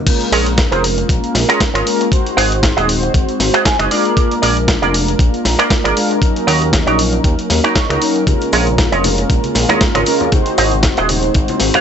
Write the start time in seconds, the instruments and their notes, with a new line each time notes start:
0.06 analog polysynth G#3 A#3 C#4 F4 A#4, kick, closed hi-hat, crash
0.21 closed hi-hat
0.32 analog synth bass A#1, clean electric guitar F4 G#4 A#4 C#5, open hi-hat
0.46 closed hi-hat
0.58 muted clean electric guitar stroke, kick, snare, closed hi-hat
0.71 analog synth bass F1, clean electric guitar F4 G#4 A#4 C5, closed hi-hat
0.84 open hi-hat
0.97 muted clean electric guitar stroke, closed hi-hat
1.09 analog synth bass A#1, kick, closed hi-hat
1.24 closed hi-hat
1.35 analog synth bass A#1, snare, open hi-hat
1.49 clean electric guitar F4 G#4 A#4 C#5, finger snap, closed hi-hat
1.60 kick, snare, closed hi-hat
1.74 analog synth bass G#1, clean electric guitar F4 G#4 A#4 C#5, finger snap, closed hi-hat
1.86 analog polysynth G#3 A#3 C#4 F4 A#4, open hi-hat
2.00 muted clean electric guitar stroke, closed hi-hat
2.11 analog polysynth G#3 C4 D#4 F#4 C5, kick, closed hi-hat
2.27 closed hi-hat
2.37 analog synth bass G#1, clean electric guitar F#4 G#4 C5 D#5, open hi-hat
2.52 closed hi-hat
2.63 muted clean electric guitar stroke, kick, snare, closed hi-hat
2.77 analog synth bass D#1, clean electric guitar F#4 G#4 C5 D#5, closed hi-hat
2.89 open hi-hat
3.02 muted clean electric guitar stroke, closed hi-hat
3.14 analog synth bass G#1, kick, closed hi-hat
3.29 closed hi-hat
3.40 analog synth bass G#1, snare, open hi-hat
3.54 clean electric guitar F#4 G#4 C5 D#5, finger snap, closed hi-hat
3.65 clean electric guitar G#5, kick, snare, closed hi-hat
3.79 analog synth bass F#1, clean electric guitar F#4 G#4 C5 D#5, finger snap, closed hi-hat
3.91 analog polysynth G#3 A#3 D4 F4 A#4, clean electric guitar F4 G#4 A#4 D5, open hi-hat
4.05 closed hi-hat
4.16 analog polysynth A#3 D4 F4 A#4, kick, closed hi-hat
4.31 closed hi-hat
4.42 analog synth bass A#1, clean electric guitar F4 G#4 A#4 D5, open hi-hat
4.57 closed hi-hat
4.68 muted clean electric guitar stroke, kick, snare, closed hi-hat
4.82 analog synth bass F1, clean electric guitar F4 G#4 A#4 D5, closed hi-hat
4.94 open hi-hat
5.08 muted clean electric guitar stroke, closed hi-hat
5.19 analog synth bass A#1, kick, closed hi-hat
5.34 closed hi-hat
5.45 analog synth bass A#1, snare, open hi-hat
5.59 clean electric guitar F4 G#4 A#4 D5, finger snap, closed hi-hat
5.70 kick, snare, closed hi-hat
5.84 analog synth bass G#1, clean electric guitar F4 G#4 A#4 D5, finger snap, closed hi-hat
5.96 analog polysynth G#3 A#3 D4 F4 A#4, open hi-hat
6.10 muted clean electric guitar stroke, closed hi-hat
6.21 analog polysynth F#3 A#3 C#4 D#4 A#4, kick, closed hi-hat
6.36 closed hi-hat
6.47 analog synth bass D#2, clean electric guitar D#4 F#4 A#4 C#5, open hi-hat
6.62 closed hi-hat
6.73 muted clean electric guitar stroke, kick, snare, closed hi-hat
6.87 analog synth bass A#1, clean electric guitar D#4 F#4 A#4 C#5, closed hi-hat
6.99 open hi-hat
7.13 muted clean electric guitar stroke, closed hi-hat
7.24 analog synth bass D#2, kick, closed hi-hat
7.39 closed hi-hat
7.50 analog synth bass D#2, snare, open hi-hat
7.64 clean electric guitar D#4 F#4 A#4 C#5, finger snap, closed hi-hat
7.76 clean electric guitar C#5, kick, snare, closed hi-hat
7.89 analog synth bass C#2, clean electric guitar D#4 F#4 A#4 C#5, finger snap, closed hi-hat
8.01 analog polysynth F#3 A#3 C#4 D#4 A#4, open hi-hat
8.15 muted clean electric guitar stroke, closed hi-hat
8.26 analog polysynth G#3 A#3 F4, kick, closed hi-hat, high bongo, high conga, shaker
8.41 closed hi-hat, shaker
8.52 analog synth bass A#1, clean electric guitar F4 G#4 A#4 C#5, open hi-hat, shaker
8.67 closed hi-hat, high conga, shaker
8.78 muted clean electric guitar stroke, kick, snare, closed hi-hat, high bongo, shaker
8.92 analog synth bass F1, clean electric guitar F4 G#4 A#4 C#5, closed hi-hat, shaker
9.04 open hi-hat, high conga, shaker
9.18 muted clean electric guitar stroke, closed hi-hat, high bongo, shaker
9.30 analog synth bass A#1, kick, closed hi-hat, shaker
9.43 closed hi-hat, high conga, shaker
9.55 analog synth bass A#1, snare, open hi-hat, shaker
9.69 clean electric guitar F4 G#4 A#4 C#5, finger snap, closed hi-hat, high bongo, low conga, shaker
9.81 kick, snare, closed hi-hat, shaker
9.95 analog synth bass G#1, clean electric guitar F4 G#4 A#4 C#5, finger snap, closed hi-hat, high conga, shaker
10.06 analog polysynth G#3 A#3 C#4 F4 A#4, open hi-hat, high bongo, shaker
10.20 muted clean electric guitar stroke, closed hi-hat, low conga, shaker
10.32 analog polysynth C4 D#4, kick, closed hi-hat, high conga, shaker
10.46 closed hi-hat, shaker
10.58 analog synth bass G#1, clean electric guitar F#4 G#4 C5 D#5, open hi-hat, high bongo, shaker
10.72 closed hi-hat, high conga, shaker
10.83 muted clean electric guitar stroke, kick, snare, closed hi-hat, shaker
10.97 analog synth bass D#1, clean electric guitar F#4 G#4 C5 D#5, closed hi-hat, high bongo, shaker
11.09 open hi-hat, high conga, shaker
11.23 muted clean electric guitar stroke, closed hi-hat, shaker
11.34 analog synth bass G#1, kick, closed hi-hat, shaker
11.48 closed hi-hat, high bongo, high conga, shaker
11.60 analog synth bass G#1, snare, open hi-hat, shaker
11.74 clean electric guitar F#4 G#4 C5 F5, finger snap, closed hi-hat, low conga, shaker